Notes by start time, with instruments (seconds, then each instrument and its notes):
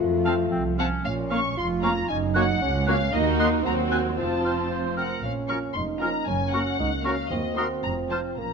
Already playing: french horn section F4
0.00 double bass section F2, cello section F3, bassoon A3, marimba F4
0.25 clarinet C4, viola section C4, violin section F5 A5, cor anglais F5, flute A5
0.51 double bass section C2, clarinet C4
0.78 viola section C4, clarinet C#4, violin section F5 F#5 A5, cor anglais F5, flute A5
1.04 double bass section A#1, cello section A#2, bassoon C#4, violin section F5
1.30 clarinet A#3, viola section A#3 C#4, french horn section A#3 C#4, violin section C#4 A#4 C#6, cor anglais F5, flute C#6
1.57 double bass section F1, cello section F2, bassoon F4, violin section C6
1.82 french horn section A#3 C#4, viola section A#3 C#4, clarinet A#3, violin section C#4 A#4 A#5, cor anglais F5, flute C#6
2.08 double bass section F#1, cello section F#2, bassoon D#4, violin section G#5
2.34 french horn section A#3 C#4, clarinet A#3, viola section A#3 C#4, violin section F#4 A#4 F#5, cor anglais C#5, flute F#6
2.60 double bass section C#2, cello section C#2, bassoon C#4
2.87 french horn section A#3 C#4, viola section A#3 C#4, clarinet A#3, violin section F#4 A#4 F5, cor anglais C#5, flute F#6
3.12 double bass section D#2, cello section D#2, viola section A#3 D#4, bassoon D#4, violin section F#4 A#4 D#5
3.39 french horn section A#3 F#4, clarinet A#3, cor anglais D#5, violin section C6, flute F#6
3.64 cello section D#2, double bass section D#2, viola section F#3 C4, violin section F#4 C5 A#5, bassoon F#4
3.90 clarinet C4, french horn section C4 F#4, cor anglais C5, violin section G#5, flute F#6
4.17 double bass section F1, cello section F2, viola section F3 C4, violin section F4 C5 A5, bassoon F4
4.43 french horn section C4 F4, clarinet C4, cor anglais C5, flute F6
4.71 cor anglais C5
4.96 french horn section C4 F4, clarinet C4, cor anglais A#4, violin section F#5, flute F6
5.22 double bass section A#1, cello section A#2, french horn section A#3 C#4, bassoon C#4, violin section F5
5.48 viola section F3 C#4, clarinet C#4, violin section F4 A#4 C#6, cor anglais A#4, flute F6
5.74 double bass section F1, cello section F2, bassoon D#4, violin section C6
6.01 viola section F3 C#4, clarinet C#4, violin section F4 A#4 A#5, cor anglais A#4, flute F6
6.27 double bass section F#1, cello section F#2, bassoon C#4, violin section G#5
6.51 viola section A#3 C#4, clarinet F#4, violin section F#4 A#4 F#5, cor anglais A#4, flute C#6
6.79 double bass section C#2, cello section C#2, bassoon D#4
7.04 viola section A#3 C#4, bassoon C#4, clarinet F#4, violin section F#4 A#4 F5, cor anglais A#4, flute C#6
7.30 double bass section D#2, cello section D#2, french horn section A#3 F#4, bassoon C4, violin section D#5
7.57 viola section A#3 D#4, clarinet F#4, violin section F#4 A#4 C6, cor anglais A#4, flute D#6
7.83 double bass section F1, cello section F2, french horn section C4 F4, violin section A#5
8.10 viola section F3 C4, clarinet F4, violin section F4 C5 A5, cor anglais C5, flute F6
8.36 double bass section A#1, cello section A#2, bassoon A#3, french horn section C#4, violin section A#5